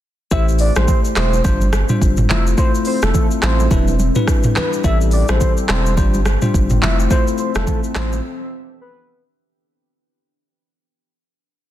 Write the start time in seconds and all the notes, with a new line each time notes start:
0.31 A1 A3 E4 G4 C5 E5, kick, shaker
0.48 shaker
0.59 D5, open hi-hat, shaker
0.75 A1 A3 E4 G4 C5, cross-stick, high conga, shaker
0.88 kick, low conga, shaker
1.05 shaker
1.16 E1 A3 E4 G4 C5, cross-stick, clap, high conga, shaker
1.33 high conga, shaker
1.44 G1 G3 C4 D4 F4 C5, kick, low conga, shaker
1.61 high conga, shaker
1.73 cross-stick, high conga, shaker
1.89 G3 D4 F4 C5, mid tom, shaker
2.01 G1, kick, shaker
2.17 mid tom, shaker
2.29 F1 A3 E4 F4 C5 E5, clap, high conga, low conga
2.47 shaker
2.58 A3 E4 F4 C5, kick, shaker
2.75 shaker
2.85 C5, open hi-hat, shaker
3.02 F1 A3 E4 F4 A4 C5, cross-stick, high conga, shaker
3.14 kick, low conga, shaker
3.31 shaker
3.42 A1 A3 E4 F4 C5, cross-stick, clap, high conga, shaker
3.60 high conga, shaker
3.71 E1 G3 D4 E4 G4 B4, kick, low conga, shaker
3.87 high conga, shaker
3.99 high conga, shaker
4.15 G3 D4 E4 B4, mid tom, shaker
4.27 kick, cross-stick, shaker
4.43 mid tom, shaker
4.56 G3 D4 E4 B4, cross-stick, clap, high conga, low conga
4.73 shaker
4.84 A1 G3 C4 E4 A4 E5, kick, shaker
5.01 shaker
5.11 D5, open hi-hat, shaker
5.28 A1 G3 C4 E4 A4 C5, cross-stick, high conga, shaker
5.41 kick, low conga, shaker
5.57 shaker
5.69 E1 G3 C4 E4 A4 C5, cross-stick, clap, high conga, shaker
5.86 high conga, shaker
5.97 G1 G3 D4 F4 C5, kick, low conga, shaker
6.14 high conga, shaker
6.25 cross-stick, high conga, shaker
6.42 G3 D4 F4 C5, mid tom, shaker
6.54 G1, kick, shaker
6.70 mid tom, shaker
6.82 F1 A3 E4 F4 C5 E5, clap, high conga, low conga
7.00 shaker
7.10 A3 E4 F4 C5, kick, low conga, shaker
7.28 shaker
7.38 C5, shaker
7.55 F1 A3 E4 F4 A4 C5, cross-stick, high conga, shaker
7.67 kick, low conga, shaker
7.84 shaker
7.95 A1 E4 F4 C5, cross-stick, clap, high conga, shaker
8.13 high conga, shaker
8.81 B4